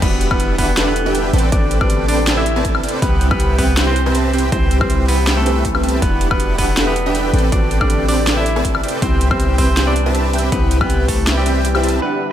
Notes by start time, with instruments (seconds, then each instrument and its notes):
0.01 808-style bass E1, grand piano E3 G3 B3 D4 F#4, clean electric guitar B3 B4, supersaw synth D4 G4 B4 E5 F#5, kick, closed hi-hat, crash
0.21 closed hi-hat
0.29 grand piano E3 G3 B3 D4 F#4, clean electric guitar B3 B4, supersaw synth D4 G4 B4 E5 F#5, kick, high woodblock
0.40 closed hi-hat
0.58 clean electric guitar B3 B4, supersaw synth D4 G4 B4 E5 F#5, kick, open hi-hat
0.75 grand piano E3 G3 B3 D4 A4, snare, closed hi-hat
0.87 clean electric guitar B3 B4
0.96 closed hi-hat
1.06 supersaw synth D4 G4 B4 E5 G5
1.15 closed hi-hat
1.33 808-style bass A1, supersaw synth C4 A4 B4 D5 G5, closed hi-hat
1.38 closed hi-hat
1.51 grand piano D3 A3 B3 C4 F#4, supersaw synth C4 A4 B4 D5 G5, clean electric guitar D4 D5, kick, closed hi-hat
1.71 closed hi-hat
1.79 grand piano D3 A3 C4 B4, supersaw synth C4 A4 B4 D5 G5, clean electric guitar D4 D5, kick, high woodblock
1.83 grand piano G4
1.90 closed hi-hat
2.08 supersaw synth C4 A4 B4 D5 G5, clean electric guitar D4 D5, open hi-hat
2.27 snare, closed hi-hat
2.37 clean electric guitar E4 E5
2.46 closed hi-hat
2.56 supersaw synth C4 A4 B4 D5 A5
2.65 kick, closed hi-hat
2.75 high woodblock
2.84 supersaw synth C4 A4 B4 D5 G5, closed hi-hat
2.89 closed hi-hat
3.01 808-style bass C2, grand piano E3 G3 B3 C4 G4, clean electric guitar B3 B4, supersaw synth C4 G4 B4 E5 G5, kick, closed hi-hat
3.21 closed hi-hat
3.29 grand piano E3 G3 B3 C4 G4, clean electric guitar B3 B4, supersaw synth C4 G4 B4 E5 G5, kick, high woodblock
3.40 closed hi-hat
3.58 clean electric guitar B3 B4, supersaw synth C4 G4 B4 E5 G5, kick, open hi-hat
3.75 grand piano E3 G3 C4 C5, snare, closed hi-hat
3.87 clean electric guitar C4 C5
3.96 closed hi-hat
4.06 supersaw synth C4 G4 B4 E5 A5
4.15 closed hi-hat
4.33 supersaw synth C4 G4 B4 E5 G5, closed hi-hat
4.38 closed hi-hat
4.51 808-style bass C2, grand piano E3 G3 B3 C4 E4, clean electric guitar C4 C5, supersaw synth C4 G4 B4 E5 G5, kick, closed hi-hat
4.71 closed hi-hat
4.79 grand piano E3 G3 C4 G4 B4, clean electric guitar C4 C5, supersaw synth C4 G4 B4 E5 G5, kick, high woodblock
4.90 closed hi-hat
5.08 clean electric guitar B3 B4, supersaw synth C4 G4 B4 E5 G5, open hi-hat
5.27 snare, closed hi-hat
5.37 clean electric guitar A3 A4
5.45 grand piano E3 G3 B3 C4 B4, supersaw synth C4 G4 B4 E5 G5, closed hi-hat
5.65 kick, closed hi-hat
5.74 grand piano E3 G3 B3 C4 E4, supersaw synth C4 G4 B4 E5 G5, high woodblock
5.83 supersaw synth C4 G4 B4 E5 A5, closed hi-hat
5.89 closed hi-hat
6.01 808-style bass E1, grand piano E3 G3 B3 D4 F#4, clean electric guitar B3 B4, supersaw synth D4 G4 B4 E5 F#5, kick, closed hi-hat
6.21 closed hi-hat
6.29 grand piano E3 G3 B3 D4, clean electric guitar B3 B4, supersaw synth D4 G4 B4 E5 F#5, kick, high woodblock
6.33 grand piano F#4
6.40 closed hi-hat
6.58 clean electric guitar B3 B4, supersaw synth D4 G4 B4 E5 F#5, kick, open hi-hat
6.75 grand piano E3 G3 B3 D4 A4, snare, closed hi-hat
6.87 clean electric guitar B3 B4
6.96 closed hi-hat
7.06 supersaw synth D4 G4 B4 E5 G5
7.15 closed hi-hat
7.33 808-style bass A1, supersaw synth C4 A4 B4 D5 G5, closed hi-hat
7.39 closed hi-hat
7.51 grand piano D3 A3 B3 C4 F#4, supersaw synth C4 A4 B4 D5 G5, clean electric guitar D4 D5, kick, closed hi-hat
7.71 closed hi-hat
7.79 grand piano D3 A3 C4 G4 B4, supersaw synth C4 A4 B4 D5 G5, clean electric guitar D4 D5, kick, high woodblock
7.90 closed hi-hat
8.08 supersaw synth C4 A4 B4 D5 G5, clean electric guitar D4 D5, open hi-hat
8.27 snare, closed hi-hat
8.37 clean electric guitar E4 E5
8.46 closed hi-hat
8.56 supersaw synth C4 A4 B4 D5 A5
8.65 kick, closed hi-hat
8.75 high woodblock
8.83 supersaw synth C4 A4 B4 D5 G5, closed hi-hat
8.88 closed hi-hat
9.01 808-style bass C2, grand piano E3 G3 B3 C4 G4, clean electric guitar C4 C5, supersaw synth C4 G4 B4 E5 G5, kick, closed hi-hat
9.21 closed hi-hat
9.29 grand piano E3 G3 B3 C4 G4, clean electric guitar C4 C5, supersaw synth C4 G4 B4 E5 G5, kick, high woodblock
9.40 closed hi-hat
9.58 clean electric guitar C4 C5, supersaw synth C4 G4 B4 E5 G5, kick, open hi-hat
9.75 grand piano E3 G3 B3 C4, snare, closed hi-hat
9.79 grand piano B4
9.87 clean electric guitar D4 D5
9.96 closed hi-hat
10.06 supersaw synth C4 G4 B4 E5 A5
10.15 closed hi-hat
10.33 supersaw synth C4 G4 B4 E5 G5, closed hi-hat
10.38 closed hi-hat
10.51 808-style bass C2, grand piano E3 G3 B3 C4 E4, clean electric guitar B3 B4, supersaw synth C4 G4 B4 E5 G5, kick, closed hi-hat
10.71 closed hi-hat
10.79 grand piano E3 G3 C4 G4 B4, clean electric guitar B3 B4, supersaw synth C4 G4 B4 E5 G5, kick, high woodblock
10.90 closed hi-hat
11.08 clean electric guitar A3 A4, supersaw synth C4 G4 B4 E5 G5, kick, open hi-hat
11.27 snare, closed hi-hat
11.37 clean electric guitar G3 G4
11.45 grand piano E3 G3 B3 C4 B4, supersaw synth C4 G4 B4 E5 G5, closed hi-hat
11.65 closed hi-hat
11.74 grand piano E3 G3 B3 C4 E4, supersaw synth C4 G4 B4 E5 G5, high woodblock
11.83 supersaw synth C4 G4 B4 E5 A5, closed hi-hat
11.89 closed hi-hat
12.00 grand piano E3 G3 B3 D4 F#5, supersaw synth D4 G4 B4 E5 F#5, clean electric guitar B4